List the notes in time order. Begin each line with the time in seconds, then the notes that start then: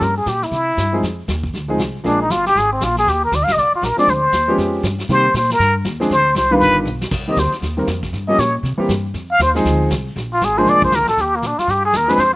0.01 G2 A#4, brush sweep, kick, snare
0.18 G#4
0.26 A#2 G4, kick, snare, hi-hat pedal
0.42 E4, snare
0.51 C3, brush sweep, kick, snare
0.77 G2, kick, snare, hi-hat pedal
0.92 F3 G#3 C4 D#4 G#4
1.03 F2, brush sweep, kick, snare
1.28 D#2, kick, snare, hi-hat pedal
1.44 kick
1.54 D2, brush sweep, kick, snare
1.68 F3 G#3 C4 D#4 G#4
1.78 C2, kick, snare, hi-hat pedal
2.04 A#1 F3 G#3 A#3 D4 G#4, brush sweep, kick, snare
2.08 D4
2.22 D#4
2.30 G1 F4, kick, snare, hi-hat pedal
2.46 G4, snare
2.55 G#1 G#4, brush sweep, kick, snare
2.73 C4
2.81 A#1 F4, kick, snare, hi-hat pedal
2.97 G#4, snare
3.06 D#2 G4, brush sweep, kick, snare
3.25 A#4
3.31 D2 D5, kick, snare, hi-hat pedal
3.40 A#1 F5, snare
3.47 snare
3.49 G1 D#5, snare
3.57 C2 D5, brush sweep, kick, snare
3.73 F4, muted upright bass stroke
3.82 A#1 A#4, kick, snare, hi-hat pedal
3.97 F3 G#3 C4 D4 G#4 D5, muted upright bass stroke, snare
4.07 D2 C5, brush sweep, kick, snare
4.32 D#2, kick, snare, hi-hat pedal
4.48 F3 G#3 B3 C#4 G4
4.58 F2, brush sweep, kick, snare
4.83 G2, kick, snare, hi-hat pedal
4.99 snare
5.09 C3 D#3 G3 A#3 C4 G4 C5, brush sweep, kick, snare
5.34 A#2 C5, kick, snare, hi-hat pedal
5.43 snare
5.50 snare
5.51 A#4, snare
5.59 G2, brush sweep, kick, snare
5.85 D#2, kick, snare, hi-hat pedal
6.00 F3 G#3 C4 D4 G#4, snare
6.10 D2 C5, brush sweep, kick, snare
6.35 C2 C5, kick, snare, hi-hat pedal
6.51 D#3 G3 B3 D4 F4 B4
6.60 G1, brush sweep, kick, snare
6.85 B1, hi-hat pedal
7.01 snare
7.11 C2, brush sweep, kick, snare, crash
7.28 D#3 G3 A#3 C4 G4 D#5
7.37 D2 C5, kick, snare, hi-hat pedal
7.52 snare
7.62 D#2, brush sweep, kick, snare
7.77 D#3 G3 A#3 C4 A#4
7.87 F2, kick, snare, hi-hat pedal
8.03 kick, snare
8.13 G2, brush sweep, kick, snare
8.28 F3 G3 A#3 C#4 G4 D#5
8.38 A#2 C#5, kick, snare, hi-hat pedal
8.63 C3, brush sweep, kick, snare
8.78 E3 G3 A#3 C4 G4, muted upright bass stroke
8.89 G2, kick, snare, hi-hat pedal
9.14 F2, brush sweep, kick, snare
9.32 F5
9.39 D#2 C5, kick, snare, hi-hat pedal
9.55 F3 G#3 C4 D#4 G#4, snare
9.65 D2, brush sweep, kick, snare
9.90 C2, kick, snare, hi-hat pedal
10.16 A#1, brush sweep, kick, snare
10.33 F4
10.41 G#1 G#4, kick, snare, hi-hat pedal
10.57 F3 G#3 A#3 D4 G#4 C5
10.66 C2 D5, brush sweep, kick, snare
10.82 C5, kick
10.92 D2 A#4, kick, snare, hi-hat pedal
11.00 A#1
11.07 G#1 A4, snare
11.17 D#2, brush sweep, kick, snare
11.21 G4
11.36 A#3
11.42 A#2, kick, snare, hi-hat pedal
11.47 D4
11.58 F4, muted upright bass stroke, snare
11.67 G2 G4, brush sweep, kick, snare
11.85 G#4
11.93 D#2 A#4, kick, snare, hi-hat pedal
12.08 F3 G#3 C4 D4 G#4 B4, snare
12.18 F2 C5, brush sweep, kick, snare